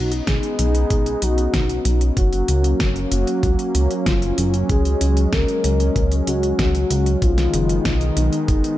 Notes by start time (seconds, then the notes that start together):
Already playing: B1 B3 C#4 D#4 F#4
0.12 closed hi-hat
0.27 B1 G#4, kick, snare, closed hi-hat
0.43 closed hi-hat
0.59 B1, closed hi-hat
0.75 closed hi-hat
0.90 B1, kick, closed hi-hat
1.06 closed hi-hat
1.22 B1 F#4, closed hi-hat
1.38 closed hi-hat
1.54 B1, kick, snare, closed hi-hat
1.69 closed hi-hat
1.85 B1, closed hi-hat
2.01 closed hi-hat
2.17 F#1 F#3 A#3 F#4, kick, closed hi-hat
2.33 closed hi-hat
2.48 C#2, closed hi-hat
2.64 closed hi-hat
2.80 F#1, kick, snare, closed hi-hat
2.96 closed hi-hat
3.12 F#1 F#4, closed hi-hat
3.27 closed hi-hat
3.43 C#2, kick, closed hi-hat
3.59 closed hi-hat
3.75 C#2, closed hi-hat
3.91 closed hi-hat
4.06 F#1 F4, kick, snare, closed hi-hat
4.22 closed hi-hat
4.38 F#1, closed hi-hat
4.54 closed hi-hat
4.69 C#2 G#3 G#4, kick, closed hi-hat
4.85 closed hi-hat
5.01 C#2, closed hi-hat
5.17 closed hi-hat
5.33 C#2 A#4, kick, snare, closed hi-hat
5.48 closed hi-hat
5.64 C#2, closed hi-hat
5.80 closed hi-hat
5.96 C#2, kick, closed hi-hat
6.12 closed hi-hat
6.27 C#2 F#4, closed hi-hat
6.43 closed hi-hat
6.59 C#2, kick, snare, closed hi-hat
6.75 closed hi-hat
6.91 C#2, closed hi-hat
7.06 closed hi-hat
7.22 B1 D#3 G#3 B3 F4, kick, closed hi-hat
7.38 snare, closed hi-hat
7.54 F#1, closed hi-hat
7.69 closed hi-hat
7.85 B1, kick, snare, closed hi-hat
8.01 closed hi-hat
8.17 B1 D#4, closed hi-hat
8.33 closed hi-hat
8.48 F#1, kick, closed hi-hat
8.64 closed hi-hat